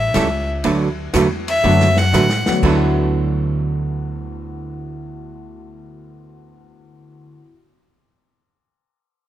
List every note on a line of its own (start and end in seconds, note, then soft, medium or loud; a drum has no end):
0.00 0.13 A1 medium
0.00 0.49 E5 medium
0.14 0.63 C#2 loud
0.14 0.27 E3 medium
0.14 0.27 G3 medium
0.14 0.27 C#4 medium
0.14 0.27 E4 medium
0.14 0.27 A4 medium
0.14 snare medium
0.14 hi-hat pedal medium
0.14 ride medium
0.64 1.13 D2 medium
0.64 0.87 D3 medium
0.64 0.88 F#3 medium
0.64 0.88 A3 medium
0.64 0.88 D4 medium
0.64 0.88 F#4 medium
0.64 0.88 B4 medium
0.64 ride medium
1.13 1.62 E2 medium
1.13 1.26 D3 medium
1.13 1.26 F#3 medium
1.13 1.26 A3 medium
1.13 1.26 D4 medium
1.13 1.27 F#4 medium
1.13 1.27 B4 medium
1.13 snare medium
1.13 hi-hat pedal medium
1.13 ride medium
1.48 2.00 E5 loud
1.48 ride medium
1.63 2.12 F#2 loud
1.63 1.87 D3 medium
1.63 1.94 F#3 medium
1.63 1.87 F#3 medium
1.63 1.94 A3 medium
1.63 1.87 A3 medium
1.63 1.94 B3 medium
1.63 1.94 D4 medium
1.63 1.87 D4 medium
1.63 1.94 F#4 medium
1.63 1.87 F#4 medium
1.63 1.87 B4 medium
1.80 snare medium
1.97 2.55 F#5 medium
1.97 snare medium
2.13 2.45 A2 medium
2.13 2.26 D3 medium
2.13 2.26 F#3 medium
2.13 2.26 A3 medium
2.13 2.26 D4 medium
2.13 2.26 F#4 medium
2.13 2.26 B4 medium
2.13 snare medium
2.13 hi-hat pedal medium
2.29 snare medium
2.46 2.61 F#3 medium
2.46 2.61 A3 medium
2.46 2.61 B3 medium
2.46 2.62 D4 medium
2.46 2.62 F#4 medium
2.46 muted upright bass stroke soft
2.46 snare loud
2.51 7.32 D2 medium
2.57 7.38 D3 medium
2.63 7.40 D2 medium
2.63 7.44 D3 medium
2.63 7.44 F#3 medium
2.63 7.45 A3 medium
2.63 7.44 B3 medium
2.63 7.45 D4 medium
2.63 7.45 F#4 medium
2.63 7.46 B4 medium
2.63 kick medium
2.63 crash medium
2.70 7.50 E4 medium
2.76 7.57 F#4 medium